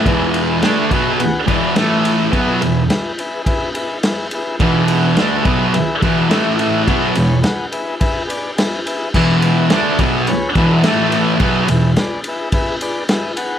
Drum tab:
CC |--------|--------|--------|--------|
RD |xxxxxxxx|xxxxxxxx|xxxxxxxx|xxxxxxxx|
SD |--o---o-|--o---o-|--o---o-|--o---o-|
BD |o--o-o--|o---o---|o--o-o--|o---o---|

CC |x-------|--------|
RD |-xxxxxxx|xxxxxxxx|
SD |--o---o-|--o---o-|
BD |o--o-o--|o---o---|